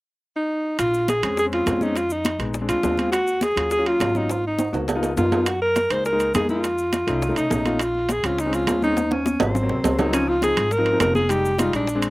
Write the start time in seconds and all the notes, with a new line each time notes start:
0.36 D#4
0.79 A#1 F4, high bongo, high conga, high timbale, maracas
0.94 high conga, maracas
1.08 G#4, high bongo, high conga, high timbale, low timbale, maracas
1.23 F2 G#3 C4 C#4, high bongo, high conga, high timbale, maracas
1.37 G#4, high bongo, high conga, maracas
1.45 G#3 C4 C#4
1.52 F4, high bongo, high conga, high timbale
1.66 F2 G#3 C4 C#4, high bongo, low bongo, high conga, high timbale, low timbale, maracas
1.81 G#3 C4 C#4 D#4, high bongo, high conga, maracas
1.96 F4, high bongo, high conga, high timbale, maracas
2.10 D#4, high conga, maracas
2.25 high bongo, high conga, high timbale, low timbale, maracas
2.39 A#1 G#3 B3 D#4, high bongo, high timbale, maracas
2.54 high bongo, high conga, maracas
2.61 G#3 C4 D4
2.69 D2 F4, high conga, high timbale, maracas
2.83 D#2 G#3 C4 D4, high bongo, low bongo, high conga, low timbale, maracas
2.97 G#3 C4 F4, high conga, high timbale, maracas
3.12 F#4, high bongo, high conga, high timbale, maracas
3.27 high conga, maracas
3.41 G#4, high bongo, high conga, high timbale, low timbale, maracas
3.56 D#2 F#3 C#4 F4, high bongo, high conga, high timbale, maracas
3.70 G#4, high bongo, high conga, maracas
3.78 F#3 C#4 F4
3.86 F4, high bongo, high conga, high timbale
4.00 G#1 F#3 C#4 F4, high bongo, low bongo, high conga, high timbale, low timbale, maracas
4.14 F#3 C#4 D#4 F4, high bongo, high conga, maracas
4.30 F4, high bongo, high timbale, maracas
4.44 D#4, high conga
4.59 high bongo, high conga, high timbale, maracas
4.72 C#2 A#3 B3 F#4, high bongo, high timbale, maracas
4.88 high bongo, high conga, low timbale, maracas
4.95 A#3 B3 D#4 F4
5.03 high bongo, high conga, low timbale, maracas
5.17 F#2 A#3 B3 D#4 F4, high bongo, low bongo, high conga, low timbale, maracas
5.32 A#3 B3 D#4 F4, high conga, low timbale, maracas
5.46 F#4, high bongo, high timbale, maracas
5.62 A#4, high conga
5.76 high bongo, high conga, high timbale, low timbale, maracas
5.90 C#2 G#3 A#3 D#4 C5, high bongo, high conga, high timbale, maracas
6.05 A#4, high bongo, high conga, maracas
6.12 G#3 A#3 D#4
6.20 high bongo, high conga, high timbale, maracas
6.33 F2 G#3 A#3 D#4 G#4, high bongo, low bongo, high conga, high timbale, low timbale, maracas
6.49 G#3 A#3 D#4 F4, high bongo, high conga, maracas
6.64 high bongo, high conga, high timbale, maracas
6.78 high conga, maracas
6.93 high bongo, high conga, high timbale, low timbale, maracas
7.07 C2 A3 C#4 D#4, high bongo, high timbale, maracas
7.22 high bongo, high conga, maracas
7.29 A3 C#4 D#4
7.36 C2 D#4, high bongo, high conga, high timbale, maracas
7.50 A#1 A3 C#4 D#4, high bongo, low bongo, high conga, low timbale, maracas
7.65 A3 C#4 F4, high conga, high timbale, maracas
7.79 F4, high bongo, high timbale, maracas
7.95 high conga
8.09 G#4, high bongo, high conga, high timbale, low timbale, maracas
8.24 C#2 G#3 C4 C#4 F4, high bongo, high conga, high timbale, maracas
8.39 D#4, high bongo, high conga, maracas
8.46 G#3 C4 C#4
8.53 F4, high bongo, high conga, high timbale, maracas
8.67 D#2 G#3 C4 C#4, high bongo, low bongo, high conga, high timbale, low timbale, maracas
8.82 G#3 C4 C#4 D#4, high bongo, high conga, maracas
8.97 high bongo, high conga, high timbale, maracas
9.11 C#4, high conga, high timbale
9.26 high bongo, high conga, maracas
9.40 G#1 F#3 C4 C#4 F4, high bongo, low conga, low timbale, maracas
9.55 low bongo, maracas
9.63 F#3 A#3 C4
9.69 C2, low bongo, low timbale
9.84 C#2 F#3 A#3 C4, low conga, low timbale, maracas
9.98 F#3 A#3 C4 D#4, low bongo, low conga, low timbale, maracas
10.12 F3 C4 C#4 D#4, high bongo, high conga, high timbale, maracas
10.28 F4, high conga
10.42 F3 C4 D#4 G#4, high bongo, high conga, high timbale, low timbale, maracas
10.57 G#1, high bongo, high conga, low conga, high timbale, maracas
10.71 A#4, high bongo, high conga, maracas
10.78 F3 C4 D#4
10.86 high bongo, high conga, high timbale
10.93 F3 C4 D#4
11.00 F1 A#4, high bongo, low bongo, high conga, high timbale, low timbale, maracas
11.15 G#4, high bongo, high conga, maracas
11.29 G3 G#3 D#4 G4, high bongo, high conga, high timbale, maracas
11.45 high conga, maracas
11.58 G3 G#3 D#4 F4, high bongo, high conga, high timbale, low timbale, maracas
11.73 A#1 D4, high bongo, high timbale, maracas
11.87 high bongo, high conga, maracas
11.95 G#3 C4 D4
12.02 high bongo, high conga, high timbale, maracas